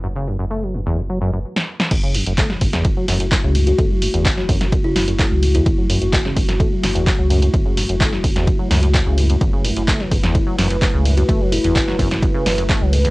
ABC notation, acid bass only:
X:1
M:4/4
L:1/16
Q:1/4=128
K:F#m
V:1 name="Acid bass" clef=bass
F,, C, F,, F,, A, F, F,, E,, F,, F, F,, F,, z4 | F,, C, F,, F,, A, F, F,, E,, F,, F, F,, F,, F,, C, F,, F,, | A, F, F,, E,, F,, F, F,, F,, F,, C, F,, F,, A, F, F,, E,, | F,, F, F,, F,, F,, C, F,, F,, A, F, F,, E,, F,, F, F,, F,, |
F,, C, F,, F,, A, F, F,, E,, F,, F, F,, F,, F,, C, F,, F,, | F,, C, F,, F,, A, F, F,, E,, F,, F, F,, F,, F,, C, F,, F,, | A, F, F,, E,, F,, F, F,, F,, F,, C, F,, F,, A, F, F,, E,, |]